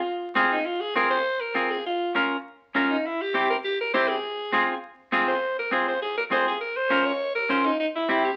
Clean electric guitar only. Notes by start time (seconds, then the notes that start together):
0.35 C4 F4 G#4
0.95 C4 F4 G#4
1.55 C4 F4 G#4
2.15 C#4 F4 A#4
2.75 C#4 F4 A#4
3.34 C4 E4 G4
3.94 C4 E4 G4
4.52 C4 F4 G#4
5.12 C4 F4 G#4
5.71 C4 F4 G#4
6.31 C4 F4 G#4
6.90 C#4 F4 A#4
7.49 C#4 F4 C5
8.09 C4 E4 G4